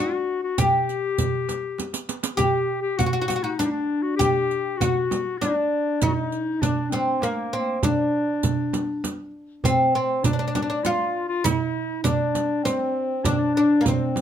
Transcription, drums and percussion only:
0.58 riq, darbuka dum, frame drum
0.88 riq, darbuka ka
1.18 riq, frame drum, darbuka dum
1.49 riq, darbuka tek, frame drum
1.78 riq, darbuka tek, frame drum
1.93 riq, darbuka ka
2.09 riq, darbuka tek
2.23 riq, darbuka ka
2.38 riq, darbuka dum, frame drum
2.69 darbuka ka
2.99 riq, darbuka dum, frame drum
3.29 riq, darbuka tek, frame drum
3.60 riq, darbuka tek, frame drum
4.20 riq, frame drum, darbuka dum
4.51 riq
4.81 riq, darbuka dum, frame drum
5.11 riq, darbuka tek, frame drum
5.42 riq, darbuka tek, frame drum
6.02 riq, darbuka dum, frame drum
6.32 riq, darbuka ka
6.62 riq, frame drum, darbuka dum
6.92 riq, darbuka tek, frame drum
7.22 riq, darbuka tek, frame drum
7.83 riq, frame drum, darbuka dum
8.13 darbuka ka
8.43 riq, frame drum, darbuka dum
8.73 riq, darbuka tek, frame drum
9.04 riq, darbuka tek, frame drum
9.64 riq, darbuka dum, frame drum
9.94 darbuka ka
10.24 riq, darbuka dum, frame drum
10.55 riq, darbuka tek, frame drum
10.85 riq, darbuka tek, frame drum
11.45 riq, frame drum, darbuka dum
12.05 riq, frame drum, darbuka dum
12.35 riq, darbuka tek, frame drum
12.65 riq, darbuka tek, frame drum
13.25 riq, frame drum, darbuka dum
13.85 riq, frame drum, darbuka dum
14.16 riq, darbuka tek, frame drum

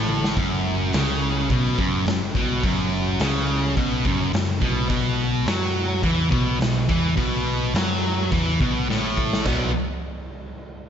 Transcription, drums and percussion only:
0.09 high tom
0.24 snare
0.37 kick, open hi-hat
0.93 snare, open hi-hat
1.50 kick, open hi-hat
1.79 kick
2.06 snare, open hi-hat
2.35 kick
2.64 kick, open hi-hat
3.19 snare, open hi-hat
3.77 kick, open hi-hat
4.05 kick
4.33 snare, open hi-hat
4.62 kick
4.90 kick, open hi-hat
5.46 snare, open hi-hat
6.03 kick, open hi-hat
6.32 kick
6.60 snare, open hi-hat
6.89 kick
7.18 kick, open hi-hat
7.74 snare, open hi-hat
8.32 kick, open hi-hat
8.61 kick
8.91 snare
9.17 kick
9.33 snare
9.46 kick, floor tom, crash

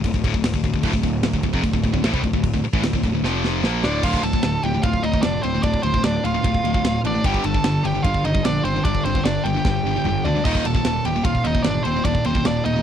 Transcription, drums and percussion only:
0.04 kick, crash
0.14 kick
0.24 kick, crash
0.34 kick
0.44 snare, crash
0.54 kick
0.64 kick, crash
0.74 kick
0.83 kick, crash
0.93 kick
1.03 kick, crash
1.23 snare, crash
1.33 kick
1.43 kick, crash
1.54 kick
1.64 kick, crash
1.73 kick
1.84 kick, crash
1.94 kick
2.04 snare, crash
2.14 kick
2.24 kick, crash
2.33 kick
2.44 kick, crash
2.54 kick
2.64 crash
2.73 kick
2.84 snare, crash
2.93 kick
3.04 kick, crash
3.24 snare
3.44 snare
3.64 snare
3.84 snare
4.03 kick, crash
4.13 kick
4.23 ride
4.33 kick
4.43 snare, ride
4.63 ride
4.83 kick, ride
4.93 kick
5.04 ride
5.14 kick
5.23 snare, ride
5.43 ride
5.63 kick, ride
5.74 kick
5.83 ride
5.94 kick
6.04 snare, ride
6.25 ride
6.44 kick, ride
6.54 kick
6.65 ride
6.74 kick
6.85 snare, ride
7.05 ride
7.24 kick, ride
7.34 kick
7.44 ride
7.54 kick
7.64 snare, ride
7.85 ride
8.05 kick, ride
8.14 kick
8.25 ride
8.35 kick
8.45 snare, ride
8.65 ride
8.85 kick, ride
8.95 kick
9.05 ride
9.15 kick
9.25 snare, ride
9.46 ride
9.65 kick, snare
10.05 mid tom
10.25 floor tom
10.45 kick, crash
10.55 kick
10.65 ride
10.75 kick
10.85 snare, ride
11.05 ride
11.24 kick, ride
11.35 kick
11.45 ride
11.55 kick
11.64 snare, ride
11.85 ride
12.05 kick, ride
12.15 kick
12.25 ride
12.35 kick
12.45 snare, ride
12.66 ride

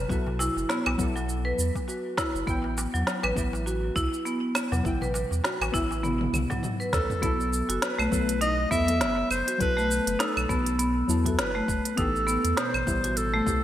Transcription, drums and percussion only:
0.10 kick, cabasa
0.27 darbuka ka, darbuka dum
0.40 darbuka tek, cabasa
0.57 darbuka ka, cabasa
0.69 snare, cabasa
0.86 darbuka ka, darbuka tek, claves
0.99 kick, cabasa
1.17 darbuka ka, cabasa
1.29 cabasa
1.59 cabasa
1.75 kick, darbuka ka, cabasa
1.89 cabasa
2.18 kick, snare, cabasa
2.36 cabasa
2.47 kick, cabasa
2.64 darbuka ka
2.78 darbuka tek, cabasa
2.95 cabasa
3.07 snare, cabasa
3.23 darbuka ka, darbuka tek, claves
3.37 kick, cabasa
3.53 darbuka ka, cabasa
3.67 cabasa
3.96 kick, cabasa
4.14 cabasa
4.26 cabasa
4.55 snare, cabasa, claves
4.72 darbuka ka, darbuka dum, cabasa
4.85 kick, cabasa
5.01 darbuka ka, darbuka dum, cabasa
5.14 darbuka tek, cabasa
5.31 darbuka ka, cabasa
5.44 snare, cabasa
5.61 darbuka ka, darbuka tek, cabasa, claves
5.74 kick, darbuka tek, cabasa
5.91 darbuka ka, cabasa
6.04 high tom, cabasa
6.21 high tom
6.34 high tom, cabasa, claves
6.50 kick, mid tom, darbuka ka, cabasa
6.63 mid tom, cabasa
6.81 cabasa
6.93 kick, snare, mid tom, cabasa
7.10 mid tom, cabasa
7.23 kick, closed hi-hat, cabasa
7.40 cabasa
7.53 cabasa
7.70 closed hi-hat, cabasa
7.82 snare, closed hi-hat, cabasa
7.99 cabasa, claves
8.12 kick, cabasa
8.29 closed hi-hat, cabasa
8.41 closed hi-hat, cabasa
8.71 kick, cabasa
8.88 closed hi-hat, cabasa
9.01 snare, closed hi-hat, cabasa
9.31 cabasa, claves
9.48 closed hi-hat, cabasa
9.60 kick, closed hi-hat, cabasa
9.78 cabasa
9.91 cabasa
10.07 closed hi-hat, cabasa
10.20 snare, closed hi-hat, cabasa
10.37 cabasa, claves
10.49 kick, cabasa
10.66 closed hi-hat, cabasa
10.79 closed hi-hat, cabasa
11.09 cabasa
11.26 kick, closed hi-hat, cabasa
11.39 snare, closed hi-hat, cabasa
11.68 kick, cabasa
11.85 closed hi-hat, cabasa
11.98 kick, closed hi-hat, cabasa
12.16 cabasa
12.28 cabasa
12.45 closed hi-hat, cabasa
12.57 snare, closed hi-hat, cabasa
12.74 cabasa, claves
12.87 kick, cabasa
13.04 closed hi-hat, cabasa
13.17 closed hi-hat, cabasa
13.47 kick, cabasa

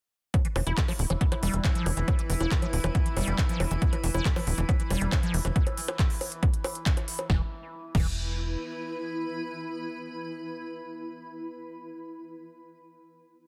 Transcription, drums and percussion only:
0.34 kick, closed hi-hat, high bongo
0.45 closed hi-hat
0.56 open hi-hat, high bongo
0.67 closed hi-hat
0.77 kick, clap, closed hi-hat
0.88 open hi-hat, high bongo
0.99 open hi-hat
1.10 closed hi-hat, high bongo
1.21 kick, closed hi-hat
1.32 closed hi-hat, high bongo
1.43 open hi-hat
1.54 closed hi-hat
1.64 kick, clap, closed hi-hat, high bongo
1.75 closed hi-hat
1.86 open hi-hat, high bongo
1.97 closed hi-hat
2.08 kick, closed hi-hat, high bongo
2.19 closed hi-hat
2.30 open hi-hat
2.41 closed hi-hat, high bongo
2.51 kick, clap, closed hi-hat
2.62 closed hi-hat, high bongo
2.73 open hi-hat
2.84 closed hi-hat, high bongo
2.95 kick, closed hi-hat
3.06 closed hi-hat
3.17 open hi-hat, high bongo
3.27 closed hi-hat
3.38 kick, clap, closed hi-hat, high bongo
3.49 closed hi-hat
3.60 open hi-hat, high bongo
3.71 closed hi-hat
3.82 kick, closed hi-hat
3.93 closed hi-hat, high bongo
4.04 open hi-hat
4.14 closed hi-hat, high bongo
4.25 kick, clap, closed hi-hat
4.36 open hi-hat, high bongo
4.47 open hi-hat
4.58 closed hi-hat
4.69 kick, closed hi-hat, high bongo
4.80 closed hi-hat
4.91 open hi-hat, high bongo
5.01 closed hi-hat
5.12 kick, clap, closed hi-hat, high bongo
5.23 closed hi-hat
5.34 open hi-hat
5.45 closed hi-hat, high bongo
5.56 kick, closed hi-hat
5.67 closed hi-hat, high bongo
5.77 open hi-hat
5.88 closed hi-hat, high bongo
5.99 kick, clap, closed hi-hat
6.10 open hi-hat
6.21 open hi-hat, high bongo
6.32 closed hi-hat
6.43 kick, closed hi-hat, high bongo
6.54 closed hi-hat
6.64 open hi-hat, high bongo
6.75 closed hi-hat
6.86 kick, clap, closed hi-hat
6.97 closed hi-hat, high bongo
7.08 open hi-hat
7.19 closed hi-hat, high bongo
7.30 kick, snare
7.95 kick, crash

